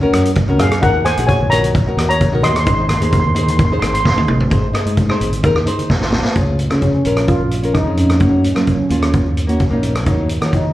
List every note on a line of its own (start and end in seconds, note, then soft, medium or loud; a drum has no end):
0.00 0.29 C#4 medium
0.00 0.30 F#4 medium
0.00 0.10 A#4 medium
0.00 0.30 A#4 loud
0.13 0.44 F#2 medium
0.13 cross-stick medium
0.13 closed hi-hat medium
0.25 closed hi-hat medium
0.35 kick medium
0.35 closed hi-hat medium
0.48 0.58 C#2 medium
0.48 0.69 C#4 medium
0.48 0.69 F#4 medium
0.48 0.70 A#4 medium
0.48 high conga medium
0.59 0.83 F#2 medium
0.59 0.82 G#4 medium
0.59 0.81 F5 medium
0.59 cross-stick medium
0.59 closed hi-hat medium
0.59 low conga medium
0.71 cross-stick medium
0.71 closed hi-hat medium
0.81 1.13 D#2 loud
0.81 1.03 D#4 medium
0.81 1.03 F#4 medium
0.81 1.04 A#4 medium
0.81 1.06 F#5 medium
0.81 kick loud
0.81 closed hi-hat medium
1.05 1.27 C5 medium
1.05 1.26 G#5 medium
1.05 cross-stick medium
1.05 closed hi-hat medium
1.17 1.87 A#1 medium
1.17 1.38 D#4 medium
1.17 1.39 F#4 medium
1.17 1.39 G#4 medium
1.17 closed hi-hat medium
1.27 1.49 C#5 medium
1.27 1.51 G#5 loud
1.27 kick medium
1.27 closed hi-hat medium
1.40 high conga medium
1.50 1.72 D#4 medium
1.50 1.72 F#4 medium
1.50 1.73 A#4 medium
1.50 2.05 C#5 medium
1.50 2.08 A#5 loud
1.50 closed hi-hat medium
1.50 low conga medium
1.64 closed hi-hat medium
1.64 high conga medium
1.75 kick loud
1.75 closed hi-hat medium
1.86 2.14 D#4 medium
1.86 2.15 F#4 medium
1.86 2.15 A#4 medium
1.97 2.28 D#2 medium
1.97 cross-stick medium
1.97 closed hi-hat medium
2.09 2.41 C#5 medium
2.09 2.44 A#5 loud
2.09 closed hi-hat medium
2.21 kick medium
2.21 closed hi-hat medium
2.32 2.42 A#1 medium
2.32 2.53 D#4 medium
2.32 2.54 F#4 medium
2.32 2.54 A#4 medium
2.32 high conga medium
2.42 2.68 D#2 medium
2.42 2.51 D#5 medium
2.42 2.50 C6 loud
2.42 cross-stick medium
2.42 closed hi-hat medium
2.42 low conga medium
2.51 2.58 C6 medium
2.56 2.64 C6 medium
2.56 cross-stick medium
2.56 closed hi-hat medium
2.65 2.97 G#1 loud
2.65 2.87 D#4 medium
2.65 2.88 G#4 medium
2.65 2.88 C5 medium
2.65 2.73 C6 medium
2.65 kick loud
2.65 closed hi-hat medium
2.74 2.80 C6 medium
2.81 2.88 C6 medium
2.89 2.94 C6 medium
2.89 cross-stick medium
2.89 closed hi-hat medium
2.89 high conga medium
2.96 3.02 C6 medium
3.01 3.71 D#2 medium
3.01 3.22 D#4 medium
3.01 3.22 G#4 medium
3.01 3.23 C5 medium
3.01 3.10 C6 medium
3.01 closed hi-hat medium
3.12 3.19 C6 medium
3.12 kick medium
3.12 closed hi-hat medium
3.20 3.26 C6 medium
3.24 3.33 C6 medium
3.24 high conga medium
3.35 3.56 D#4 medium
3.35 3.57 G#4 medium
3.35 3.57 C5 medium
3.35 3.41 C6 medium
3.35 closed hi-hat medium
3.35 low conga medium
3.43 3.49 C6 medium
3.48 3.56 C6 medium
3.48 closed hi-hat medium
3.48 high conga medium
3.57 3.64 C6 medium
3.57 kick loud
3.57 closed hi-hat medium
3.65 3.71 C6 medium
3.70 3.99 D#4 medium
3.70 3.99 G#4 medium
3.70 4.00 C5 medium
3.70 3.78 C6 medium
3.70 low conga medium
3.80 4.13 G#1 medium
3.80 3.86 C6 medium
3.80 cross-stick medium
3.80 closed hi-hat medium
3.87 3.93 C6 medium
3.94 3.99 C6 medium
3.94 closed hi-hat medium
4.01 4.08 C6 medium
4.05 4.16 C6 medium
4.05 kick medium
4.05 snare medium
4.16 4.27 D#2 medium
4.16 4.38 D#4 medium
4.16 4.38 G#4 medium
4.16 4.39 D#5 medium
4.16 high tom medium
4.16 high conga medium
4.28 4.49 G#1 medium
4.28 mid tom medium
4.28 low conga medium
4.40 floor tom medium
4.50 4.72 G#1 medium
4.50 4.65 D#4 medium
4.50 4.65 G#4 medium
4.50 4.66 C5 medium
4.50 kick loud
4.50 closed hi-hat medium
4.73 4.95 D#4 medium
4.73 4.95 G#4 medium
4.73 4.96 D#5 loud
4.73 cross-stick medium
4.73 closed hi-hat medium
4.86 5.16 G#2 medium
4.86 closed hi-hat medium
4.97 kick medium
4.97 closed hi-hat soft
5.09 5.30 D#4 medium
5.09 5.30 G#4 medium
5.09 5.31 C5 medium
5.09 cross-stick medium
5.20 5.41 G#1 medium
5.20 closed hi-hat medium
5.20 low conga medium
5.32 closed hi-hat medium
5.32 high conga medium
5.43 5.64 D#2 medium
5.43 5.58 D#4 medium
5.43 5.58 G#4 medium
5.43 5.59 A#4 medium
5.43 kick loud
5.43 closed hi-hat medium
5.55 cross-stick medium
5.55 high conga medium
5.66 5.87 D#4 medium
5.66 5.88 G#4 medium
5.66 5.88 C5 medium
5.66 closed hi-hat medium
5.78 closed hi-hat medium
5.78 high conga medium
5.90 kick medium
5.90 snare medium
5.90 low conga medium
6.01 6.22 G#1 medium
6.01 6.22 D#4 medium
6.01 6.23 G#4 medium
6.01 6.23 C5 medium
6.01 snare medium
6.12 snare medium
6.12 low conga medium
6.24 snare medium
6.35 6.67 C#2 medium
6.35 6.57 C#4 medium
6.35 6.57 F4 medium
6.35 6.57 G#4 medium
6.35 kick medium
6.35 closed hi-hat medium
6.59 closed hi-hat medium
6.59 low conga medium
6.70 7.01 C#3 medium
6.70 6.91 C#4 medium
6.70 6.92 F4 medium
6.70 6.92 G#4 medium
6.70 cross-stick medium
6.70 closed hi-hat medium
6.82 7.30 C#4 medium
6.82 kick medium
6.82 closed hi-hat soft
6.82 low conga medium
6.95 high conga medium
7.05 7.36 A#1 medium
7.05 7.40 C#4 medium
7.05 7.41 F4 medium
7.05 7.41 A#4 medium
7.05 closed hi-hat medium
7.05 low conga medium
7.17 cross-stick medium
7.17 closed hi-hat medium
7.28 7.76 F4 medium
7.28 kick medium
7.28 closed hi-hat medium
7.41 7.87 A#1 medium
7.41 high conga medium
7.51 closed hi-hat medium
7.62 7.77 C#4 medium
7.62 7.77 F4 medium
7.62 7.78 A#4 medium
7.62 closed hi-hat soft
7.74 7.98 D#4 medium
7.74 kick medium
7.74 cross-stick medium
7.74 closed hi-hat soft
7.85 8.21 F2 medium
7.85 8.07 C#4 medium
7.85 8.08 F4 medium
7.85 8.08 G#4 medium
7.97 8.05 C#4 medium
7.97 closed hi-hat medium
7.97 low conga medium
8.06 8.13 C#4 soft
8.06 cross-stick medium
8.06 closed hi-hat soft
8.14 8.20 C#4 medium
8.20 8.52 F#2 medium
8.20 8.42 A#3 medium
8.20 8.42 C#4 medium
8.20 8.28 C#4 soft
8.20 8.42 F#4 medium
8.20 kick medium
8.20 closed hi-hat medium
8.29 8.36 C#4 soft
8.37 8.42 C#4 soft
8.43 8.50 C#4 soft
8.43 closed hi-hat medium
8.43 low conga medium
8.51 8.76 A#3 medium
8.51 8.57 C#4 soft
8.56 8.86 F#3 medium
8.56 8.77 C#4 medium
8.56 8.65 C#4 soft
8.56 8.77 F4 medium
8.56 cross-stick medium
8.56 closed hi-hat medium
8.66 8.73 C#4 soft
8.66 kick medium
8.66 closed hi-hat soft
8.66 low conga soft
8.74 8.81 C#4 medium
8.80 high conga medium
8.89 9.21 D#2 medium
8.89 9.25 A#3 medium
8.89 9.26 C#4 medium
8.89 9.26 F4 medium
8.89 closed hi-hat medium
8.89 low conga medium
9.02 cross-stick medium
9.02 closed hi-hat medium
9.13 kick medium
9.13 closed hi-hat soft
9.26 9.72 D#2 medium
9.26 high conga medium
9.37 closed hi-hat medium
9.47 9.62 A#3 medium
9.47 9.62 C#4 medium
9.47 9.63 F#4 medium
9.47 closed hi-hat soft
9.60 kick medium
9.60 closed hi-hat soft
9.70 10.07 A#1 medium
9.70 9.92 A#3 medium
9.70 9.93 C#4 medium
9.70 9.93 D#4 medium
9.83 closed hi-hat medium
9.83 low conga medium
9.95 cross-stick medium
9.95 closed hi-hat soft
10.06 10.37 D#2 medium
10.06 10.27 F#3 medium
10.06 10.27 A#3 medium
10.06 10.28 D#4 medium
10.06 kick medium
10.06 closed hi-hat medium
10.29 closed hi-hat medium
10.29 low conga medium
10.41 10.71 D#3 medium
10.41 10.62 F#3 medium
10.41 10.63 A#3 medium
10.41 10.63 F4 medium
10.41 cross-stick medium
10.41 closed hi-hat medium
10.53 10.73 D#4 medium
10.53 kick medium
10.53 closed hi-hat soft
10.53 low conga medium
10.65 high conga medium